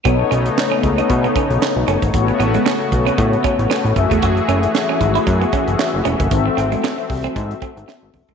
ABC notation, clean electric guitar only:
X:1
M:4/4
L:1/16
Q:"Swing 16ths" 1/4=115
K:Bmix
V:1 name="Clean electric guitar"
B, z C z2 C z D z B, C z3 C z | z2 B, G, A, z2 C z2 C z B, z2 A, | F z C z2 C z E z B, C z3 C z | z2 ^B, G, =B, z2 ^B, z2 B, z =B, z2 G, |]